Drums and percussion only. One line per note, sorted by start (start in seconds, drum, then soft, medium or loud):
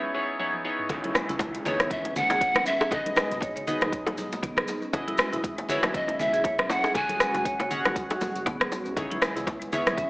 0.39 high tom medium
0.54 high tom medium
0.79 mid tom medium
0.89 kick loud
0.89 closed hi-hat medium
0.89 high bongo medium
0.89 low conga loud
0.89 maracas medium
1.04 closed hi-hat soft
1.04 high conga loud
1.15 cross-stick medium
1.15 low bongo medium
1.15 maracas medium
1.29 closed hi-hat soft
1.29 mid tom medium
1.29 high conga medium
1.29 maracas soft
1.39 kick loud
1.39 closed hi-hat medium
1.39 low bongo loud
1.39 maracas medium
1.55 closed hi-hat soft
1.55 maracas soft
1.65 low bongo medium
1.65 low conga loud
1.65 maracas medium
1.80 cross-stick medium
1.80 closed hi-hat soft
1.80 high conga medium
1.80 maracas soft
1.90 kick loud
1.90 closed hi-hat medium
1.90 low conga medium
1.90 maracas soft
2.05 closed hi-hat soft
2.05 low bongo medium
2.16 mid tom loud
2.16 low conga loud
2.16 maracas medium
2.30 closed hi-hat soft
2.30 low bongo loud
2.30 maracas soft
2.41 kick loud
2.41 closed hi-hat medium
2.41 maracas medium
2.55 cross-stick medium
2.55 closed hi-hat soft
2.55 low bongo medium
2.55 high conga loud
2.66 maracas loud
2.81 high bongo loud
2.81 maracas soft
2.91 kick loud
2.91 closed hi-hat medium
2.91 high bongo medium
2.91 low bongo medium
2.91 low conga loud
2.91 maracas soft
3.06 closed hi-hat soft
3.06 high conga loud
3.16 cross-stick loud
3.16 low bongo medium
3.16 maracas loud
3.31 closed hi-hat soft
3.31 mid tom medium
3.31 maracas soft
3.41 kick loud
3.41 closed hi-hat medium
3.41 low bongo medium
3.41 maracas soft
3.56 closed hi-hat soft
3.56 mid tom medium
3.56 maracas soft
3.67 low conga loud
3.67 maracas medium
3.81 cross-stick medium
3.81 closed hi-hat soft
3.81 low bongo medium
3.81 high conga medium
3.81 maracas soft
3.92 kick loud
3.92 closed hi-hat medium
3.92 maracas medium
4.06 closed hi-hat soft
4.06 high bongo loud
4.06 low bongo loud
4.06 high conga loud
4.18 high conga loud
4.18 maracas medium
4.32 closed hi-hat soft
4.32 low bongo medium
4.32 maracas soft
4.43 kick loud
4.43 closed hi-hat medium
4.43 low conga loud
4.43 maracas soft
4.57 cross-stick medium
4.57 closed hi-hat soft
4.57 high conga loud
4.68 low bongo medium
4.68 maracas loud
4.82 maracas soft
4.93 kick loud
4.93 closed hi-hat medium
4.93 high bongo medium
4.93 low bongo loud
4.93 low conga loud
4.93 maracas medium
5.08 closed hi-hat soft
5.08 high conga loud
5.18 cross-stick loud
5.18 low bongo medium
5.18 maracas loud
5.33 closed hi-hat soft
5.33 mid tom medium
5.33 high conga medium
5.33 maracas soft
5.44 kick loud
5.44 closed hi-hat medium
5.44 maracas medium
5.58 closed hi-hat soft
5.58 low bongo medium
5.58 maracas soft
5.69 low conga loud
5.69 maracas loud
5.83 cross-stick medium
5.83 closed hi-hat soft
5.83 low bongo loud
5.83 high conga loud
5.83 maracas soft
5.94 kick loud
5.94 closed hi-hat medium
5.94 low conga medium
5.94 maracas medium
6.08 closed hi-hat soft
6.08 low bongo medium
6.19 mid tom medium
6.19 low conga loud
6.19 maracas medium
6.34 closed hi-hat soft
6.34 maracas soft
6.44 kick loud
6.44 closed hi-hat medium
6.44 low bongo medium
6.44 maracas medium
6.59 cross-stick loud
6.59 closed hi-hat soft
6.59 high conga loud
6.70 low bongo loud
6.70 maracas medium
6.84 high bongo loud
6.84 maracas soft
6.94 kick loud
6.94 closed hi-hat medium
6.94 high bongo medium
6.94 low bongo medium
6.94 low conga loud
6.94 maracas medium
7.09 closed hi-hat soft
7.09 high conga loud
7.09 maracas soft
7.20 cross-stick loud
7.20 maracas loud
7.34 closed hi-hat soft
7.34 mid tom medium
7.34 low bongo medium
7.34 high conga medium
7.34 maracas soft
7.45 kick loud
7.45 closed hi-hat medium
7.45 maracas medium
7.60 closed hi-hat soft
7.60 mid tom medium
7.60 low bongo medium
7.60 maracas soft
7.71 low conga medium
7.71 maracas loud
7.85 cross-stick medium
7.85 closed hi-hat soft
7.85 low bongo medium
7.85 high conga medium
7.85 maracas soft
7.96 kick loud
7.96 closed hi-hat medium
7.96 maracas medium
8.10 closed hi-hat soft
8.10 high bongo loud
8.10 high conga medium
8.10 maracas soft
8.21 low bongo medium
8.21 high conga loud
8.21 maracas medium
8.36 closed hi-hat soft
8.36 maracas soft
8.46 kick loud
8.46 closed hi-hat medium
8.46 low bongo medium
8.46 low conga loud
8.46 maracas medium
8.61 cross-stick loud
8.61 closed hi-hat soft
8.61 high conga loud
8.72 low bongo medium
8.72 maracas loud
8.85 maracas soft
8.97 kick loud
8.97 closed hi-hat medium
8.97 high bongo medium
8.97 low conga medium
8.97 maracas medium
9.11 closed hi-hat soft
9.11 high conga loud
9.22 cross-stick loud
9.22 low bongo medium
9.22 maracas loud
9.36 closed hi-hat soft
9.36 mid tom medium
9.36 high conga medium
9.36 maracas soft
9.47 kick loud
9.47 closed hi-hat medium
9.47 low bongo loud
9.47 maracas medium
9.61 closed hi-hat soft
9.61 maracas soft
9.72 low bongo medium
9.72 low conga medium
9.72 maracas medium
9.86 cross-stick medium
9.86 closed hi-hat soft
9.86 high conga loud
9.86 maracas soft
9.97 kick loud
9.97 closed hi-hat medium
9.97 low conga medium
9.97 maracas medium